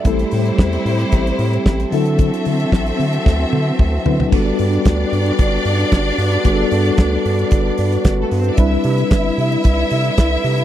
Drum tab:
CC |----------------|----------------|x---------------|----------------|
HH |xxox-xoxxxox-xox|xxox-xox--------|--oxx-oxx-oxx-ox|x-oxx-oxx-oxx-ox|
SD |----o-------o-o-|----o---o-------|----o-------o-o-|----o-------o-o-|
T1 |----------------|----------o-----|----------------|----------------|
FT |----------------|--------------oo|----------------|----------------|
BD |o---o---o---o---|o---o---o---o---|o---o---o---o---|o---o---o---o---|

CC |----------------|
HH |x-oxx-oxx-oxx-ox|
SD |----o-------o-o-|
T1 |----------------|
FT |----------------|
BD |o---o---o---o---|